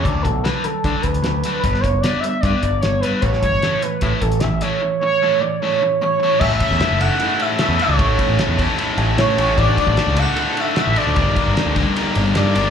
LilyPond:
<<
  \new Staff \with { instrumentName = "Synth bell" } { \time 4/4 \key a \mixolydian \tempo 4 = 151 r1 | r1 | r1 | r2. cis'''8 cis'''8 |
e'''8 e'''4 fis'''4 e'''8 e'''8 cis'''8~ | cis'''4. r4. cis'''8 cis'''8 | d'''8 d'''4 fis'''4 e'''8 e'''8 d'''8~ | d'''4. r4. d'''8 d'''8 | }
  \new Staff \with { instrumentName = "Analog synth lead" } { \time 4/4 \key a \mixolydian d''8 a'8 b'8 a'4 b'4. | b'8 cis''8 d''8 e''8 d''8 d''8 cis''8 b'8 | cis''8 cis''4 b'4 a'8 e''8 cis''8~ | cis''8 cis''4 d''8 cis''4 cis''8 cis''8 |
e''8 e''4 fis''4 e''8 e''8 cis''8~ | cis''4. r4. cis''8 cis''8 | d''8 d''4 fis''4 e''8 e''8 d''8~ | d''4. r4. d''8 d''8 | }
  \new Staff \with { instrumentName = "Distorted electric guitar" } { \time 4/4 \key a \mixolydian r4 <d d' fis' a'>8 r8 <d d' fis' a'>8 r4 <d d' fis' a'>8 | r4 <g b d' b'>8 r8 <g b d' b'>8 r4 <g b d' b'>8 | r4 <a cis' e' a'>8 r8 <a cis' e' a'>8 r4 <a cis' e' a'>8 | r4 <a cis' e' a'>8 r8 <a cis' e' a'>8 r4 <a cis' e' a'>8 |
<a, e a cis' e'>4 <a, e a cis' e'>8 <a, e a cis' e'>8 <a, e a cis' e'>4 <a, e a cis' e'>8 <a, e a cis' e'>8 | <a, e a cis' e'>4 <a, e a cis' e'>8 <a, e a cis' e'>8 <a, e a cis' e'>4 <a, e a cis' e'>8 <a, e a cis' e'>8 | <a, d a d' fis'>4 <a, d a d' fis'>8 <a, d a d' fis'>8 <a, d a d' fis'>4 <a, d a d' fis'>8 <a, d a d' fis'>8 | <g, d g bes d' g'>4 <g, d g bes d' g'>8 <g, d g bes d' g'>8 <g, d g bes d' g'>4 <g, d g bes d' g'>8 <g, d g bes d' g'>8 | }
  \new Staff \with { instrumentName = "Overdriven electric guitar" } { \clef bass \time 4/4 \key a \mixolydian <d fis a>8 <d fis>8 <d fis>8 <d fis>8 <d fis>8 <d fis>8 <d fis>8 <d fis>8 | <g b d'>8 <g b>8 <g b>8 <g b>8 <g b>8 <g b>8 <g b>8 <g b>8 | <a, e g>8 <a, e>8 <a, e>8 <a, e>8 <a, e>8 <a, e>8 <a, e>8 <a, e>8 | <a, e>8 <a, e>8 <a, e>8 <a, e>8 <a, e>8 <a, e>8 <a, e>8 <a, e>8 |
<a, e a cis' e' a'>4 <a, e a cis' e' a'>8 <a, e a cis' e' a'>8 <a, e a cis' e' a'>4 <a, e a cis' e' a'>8 <a, e a cis' e' a'>8 | <a, e a cis' e' a'>4 <a, e a cis' e' a'>8 <a, e a cis' e' a'>8 <a, e a cis' e' a'>4 <a, e a cis' e' a'>8 <a, e a cis' e' a'>8 | <a, d a d' fis' a'>4 <a, d a d' fis' a'>8 <a, d a d' fis' a'>8 <a, d a d' fis' a'>4 <a, d a d' fis' a'>8 <a, d a d' fis' a'>8 | <g, d g bes d' bes'>4 <g, d g bes d' bes'>8 <g, d g bes d' bes'>8 <g, d g bes d' bes'>4 <g, d g bes d' bes'>8 <g, d g bes d' bes'>8 | }
  \new Staff \with { instrumentName = "Picked electric bass" } { \clef bass \time 4/4 \key a \mixolydian d,8 b,,8 r4 d16 r16 d,8 d,8 r8 | g,,8 fis,,8 r4 g,16 r16 g,,8 g,,8 r8 | a,,8 g,,8 r4 a,16 r16 a,,8 a,,8 r8 | r1 |
a,,8 r16 e,16 r16 fis,,8 r4. e,16 r16 cis,16 | a,,8 r16 a,,16 r16 e,8 r8. a,,8 a,8 a,,8 | a,,8 r16 a,,16 r16 cis,8 r4. a,,16 r16 d,16 | g,,8 r16 g,,16 r16 d,8 r8. g,,8 g,8 g,,8 | }
  \new DrumStaff \with { instrumentName = "Drums" } \drummode { \time 4/4 <hh bd>8 <hh bd>8 <hh sn>8 hh8 <hh bd>8 <hh bd>16 hh16 <hh sn>8 hh8 | <hh bd>16 sn16 <hh bd>8 <hh sn>8 hh8 <hh bd>8 <hh bd>8 <hh sn>8 hh8 | <hh bd>16 sn16 <hh bd>8 <hh sn>8 hh8 <hh bd>8 <hh bd>16 hh16 <hh sn>8 hh8 | r4 r4 r4 r4 |
<cymc bd>8 <bd cymr>16 bd16 <cymr sn>8 cymr8 cymr8 cymr8 <cymr sn>8 <cymr sn>8 | <bd cymr>8 <bd cymr>8 <cymr sn>8 <bd cymr>8 cymr8 cymr8 <cymr sn>8 cymr8 | <bd cymr>8 <bd cymr>16 bd16 <cymr sn>8 cymr8 cymr8 cymr8 <cymr sn>8 cymr8 | <bd cymr>8 <bd cymr>8 <cymr sn>8 <bd cymr>8 cymr8 cymr8 <cymr sn>8 cymr8 | }
>>